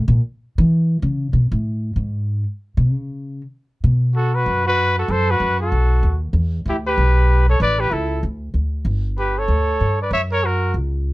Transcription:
0.08 0.19 A#2 medium
0.58 0.98 E3 medium
1.02 1.31 C#3 medium
1.33 1.51 B2 medium
1.52 1.92 A2 medium
1.96 2.43 G#2 medium
2.77 2.91 B2 medium
2.91 3.41 C#3 medium
3.84 4.43 B2 medium
4.15 4.34 F#4 medium
4.15 4.36 A4 medium
4.34 4.66 F#4 medium
4.34 4.66 B4 medium
4.46 5.06 F#2 medium
4.66 4.95 F#4 medium
4.66 4.96 B4 loud
4.98 5.12 F#4 medium
4.98 5.13 A4 medium
5.08 5.38 F#2 medium
5.08 5.32 A4 medium
5.08 5.31 C5 loud
5.30 5.61 F#4 medium
5.30 5.60 B4 medium
5.40 5.69 F#2 medium
5.60 6.20 F#4 medium
5.60 6.19 A4 medium
5.72 6.01 B1 medium
6.03 6.32 D#2 medium
6.33 6.63 E2 medium
6.66 6.95 D2 medium
6.66 6.77 E4 medium
6.66 6.77 G4 medium
6.87 7.45 G4 medium
6.87 7.45 B4 medium
6.98 7.57 B1 medium
7.49 7.60 A4 medium
7.49 7.60 C#5 medium
7.60 7.89 A1 medium
7.60 7.81 B4 medium
7.60 7.82 D5 medium
7.79 7.93 G4 medium
7.79 7.95 B4 medium
7.91 8.21 C#2 medium
7.91 8.23 E4 medium
7.91 8.24 A4 medium
8.23 8.52 D2 medium
8.54 8.83 D2 medium
8.85 9.45 G1 medium
9.19 9.40 G4 medium
9.19 9.40 B4 medium
9.39 10.01 A4 medium
9.39 10.01 C#5 medium
9.48 9.78 D2 medium
9.80 10.10 G2 medium
10.02 10.12 B4 medium
10.02 10.12 D5 medium
10.11 10.71 F#2 medium
10.11 10.21 C#5 medium
10.11 10.22 E5 medium
10.31 10.46 A#4 medium
10.31 10.47 C#5 medium
10.44 10.75 F#4 medium
10.44 10.76 A#4 medium
10.74 11.13 C#2 medium

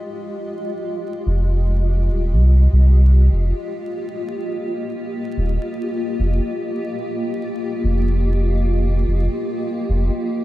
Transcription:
0.00 3.32 G#3 medium
0.00 10.44 F4 medium
0.00 10.44 G4 medium
0.00 10.44 D#5 medium
1.27 2.08 F1 loud
2.09 2.33 D#1 medium
2.32 2.67 C2 medium
2.73 3.29 C2 medium
3.32 3.52 F1 loud
3.32 10.44 A#3 medium
5.38 5.58 D#1 loud
6.20 6.40 F1 loud
7.84 9.04 F1 loud
9.08 9.28 F1 medium
9.89 10.10 F1 loud

